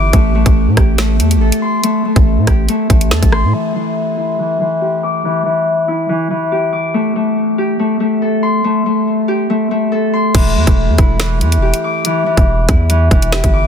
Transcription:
Already playing: G1 E3 E4 G4 D6
0.13 A1 A3, kick, closed hi-hat
0.35 A3
0.46 A1, kick, closed hi-hat
0.67 A2
0.77 A1 G4, kick, cross-stick, closed hi-hat
0.98 A3, finger snap, snare, closed hi-hat
1.19 E2 A3, closed hi-hat
1.31 closed hi-hat
1.36 A1
1.41 A4
1.52 closed hi-hat
1.62 C6
1.83 A3, closed hi-hat
2.05 A3
2.16 A1, kick, closed hi-hat
2.37 A2
2.47 A1 G4, kick, cross-stick, closed hi-hat
2.69 A3, closed hi-hat
2.90 A1 A3, kick, closed hi-hat
3.01 closed hi-hat
3.11 E2 A4, finger snap, snare
3.22 A1, kick, closed hi-hat
3.32 C6, cross-stick
3.44 A2
3.54 E3
3.75 E3
4.17 E4
4.39 E3
4.60 E3
4.81 G4
5.03 D6
5.25 E3
5.45 E3
5.88 E4
6.09 E3
6.30 E3
6.52 G4
6.73 D6
6.94 A3
7.16 A3
7.58 G4
7.79 A3
8.00 A3
8.22 A4
8.43 C6
8.64 A3
8.86 A3
9.28 G4
9.50 A3
9.71 A3
9.92 A4
10.13 C6
10.34 E1 E3, kick, closed hi-hat, crash
10.56 E2 E3
10.67 E1, kick, closed hi-hat
10.88 E2
10.98 E1 E4, kick, closed hi-hat
11.20 E3, finger snap, snare, closed hi-hat
11.41 E2 E3, closed hi-hat
11.52 closed hi-hat
11.57 E1
11.62 G4
11.74 closed hi-hat
11.84 D6
12.05 E3, closed hi-hat
12.26 E3
12.37 E1, kick, closed hi-hat
12.69 E2 E4, kick, closed hi-hat
12.90 E3, closed hi-hat
13.11 E1 E3, kick, closed hi-hat
13.22 closed hi-hat
13.32 G4, finger snap, snare
13.44 G1, kick, closed hi-hat
13.54 D6

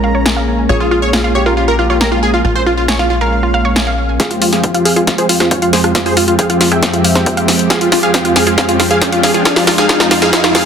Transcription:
Already playing: A#1 G#3 A#3 C#4 A#5
0.04 F5
0.15 C#5
0.26 G#5, snare
0.37 F5
0.69 A#1 F4 G#4 C#5
0.80 F4
0.91 F4
1.02 C#5
1.13 F4 G#5, snare
1.24 F4 F5
1.35 G4 C#5
1.46 F4 A#4
1.57 F4
1.68 F4 A#4
1.79 F4 F5
1.90 F4 C#5
2.01 A#4 G#5, snare
2.12 F4 F5
2.23 G#4
2.34 F4
2.45 A#1 F4
2.55 F4 C5
2.66 F4
2.77 F4
2.88 C#5 G#5, snare
2.99 F4 F5, snare
3.10 F4
3.21 A#4 F5
3.43 F4
3.54 F5
3.65 C#5
3.76 G#5, snare
3.87 F5
4.20 F2 F3 G#3 C4 F4 G4 G#4 F5, kick, snare, closed hi-hat, riser
4.31 F4, closed hi-hat
4.42 F4, open hi-hat
4.53 G#4 F5, snare, closed hi-hat
4.63 F4 G5, kick, closed hi-hat
4.74 F4 F5, closed hi-hat
4.85 G#4 F5, open hi-hat
4.96 F4 G#4, closed hi-hat
5.07 F4, kick, snare, closed hi-hat
5.18 F4 G#4 C5, closed hi-hat
5.29 F4 F5, open hi-hat
5.40 F4 C5, cross-stick, snare, closed hi-hat
5.51 F4 C#5 G5, kick, closed hi-hat
5.62 F4 F5, closed hi-hat
5.73 G#4 C5, snare, open hi-hat
5.84 F4, cross-stick, closed hi-hat
5.95 F4, kick, snare, closed hi-hat
6.06 F4 G#4 C5, open hi-hat
6.17 F4, open hi-hat
6.28 F4, closed hi-hat
6.39 G#4 F5 G5, kick, closed hi-hat
6.50 F4 F5, closed hi-hat
6.61 F4, snare, open hi-hat
6.72 G#4 E5 G5, cross-stick, closed hi-hat
6.83 kick, snare, closed hi-hat
6.93 F4, closed hi-hat
7.04 F5, open hi-hat
7.15 C5, cross-stick, snare, closed hi-hat
7.26 G5, kick, closed hi-hat
7.37 F5, closed hi-hat
7.48 snare, open hi-hat
7.59 closed hi-hat
7.70 F4 G#4 F5, kick, snare, closed hi-hat
7.81 F4, closed hi-hat
7.92 F4, snare, open hi-hat
8.03 G#4 F5, closed hi-hat
8.14 F4 G5, kick, snare, closed hi-hat
8.25 F4 F5, closed hi-hat
8.36 G#4 F5, snare, open hi-hat
8.47 F4 G#4, closed hi-hat
8.58 F4 G#4 F5, kick, snare, closed hi-hat
8.69 F4, closed hi-hat
8.80 F4, snare, open hi-hat
8.91 G#4 F5, closed hi-hat
9.01 F4 G5, kick, snare, closed hi-hat
9.12 F4 F5, closed hi-hat
9.23 G#4 F5, snare, open hi-hat
9.34 F4 G#4, closed hi-hat
9.45 F4 G#4 F5, kick, snare, closed hi-hat
9.56 F4, snare, open hi-hat
9.67 F4, snare, open hi-hat
9.78 G#4 F5, snare, closed hi-hat
9.89 F4 G#4 F5, kick, snare, closed hi-hat
10.00 F4, snare, closed hi-hat
10.11 F4, snare, open hi-hat
10.22 G#4 F5, snare, closed hi-hat
10.33 F4 G#4 F5, kick, snare, closed hi-hat, swell
10.44 F4, snare, closed hi-hat
10.55 F4 G#4 F5, snare, open hi-hat

